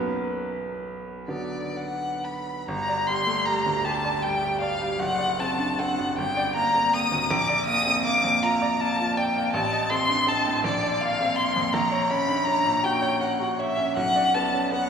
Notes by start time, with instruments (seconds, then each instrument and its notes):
Already playing: grand piano B1 B3 B4
1.28 grand piano D3 F#3 B3, violin D5
1.77 violin F#5
2.25 violin B5
2.68 grand piano G1, violin A#5
2.89 grand piano D5
3.07 grand piano G3, violin C6
3.27 grand piano A3
3.45 grand piano G3, violin A#5
3.66 grand piano D2
3.85 grand piano G4, violin A5
4.05 grand piano D5
4.23 grand piano G3, violin G5
4.43 grand piano G4
4.61 grand piano D5, violin F5
4.80 grand piano G3
4.99 grand piano F#1, violin F#5
5.19 grand piano D5
5.39 grand piano C4, violin A5
5.58 grand piano D4
5.79 grand piano C4, violin F#5
5.99 grand piano F#2
6.18 grand piano G1, violin G5
6.37 grand piano D5
6.56 grand piano A#3, violin A#5
6.74 grand piano C4
6.93 grand piano A#3, violin D#6
7.12 grand piano D2
7.30 grand piano A#1, violin D6
7.49 grand piano D5
7.66 grand piano A#3, violin D#6
7.86 grand piano C4
8.05 grand piano A#3, violin D6
8.24 grand piano F2
8.42 grand piano F4, violin A#5
8.62 grand piano D5
8.80 grand piano A#3, violin A5
9.00 grand piano F4
9.17 grand piano D5, violin G5
9.36 grand piano A#3
9.53 grand piano A1, violin A5
9.72 grand piano D#5
9.90 grand piano C4, violin C6
10.09 grand piano D4
10.27 grand piano C4, violin A5
10.46 grand piano A2
10.64 grand piano A#1, violin D5
10.83 grand piano D5
11.01 grand piano A#3, violin F5
11.21 grand piano C4
11.36 grand piano A#3, violin C6
11.56 grand piano F2
11.73 grand piano A#1, violin A#5
11.92 grand piano C#5
12.10 grand piano C#4, violin B5
12.28 grand piano D4
12.45 grand piano C#4, violin A#5
12.65 grand piano A#2
12.83 grand piano F#4, violin G5
13.02 grand piano C#5
13.20 grand piano C#4, violin F#5
13.40 grand piano F#4
13.59 grand piano C#5, violin E5
13.77 grand piano C#4
13.97 grand piano B1, violin F#5
14.16 grand piano D5
14.34 grand piano B3, violin A5
14.54 grand piano C#4
14.72 grand piano B3, violin F#5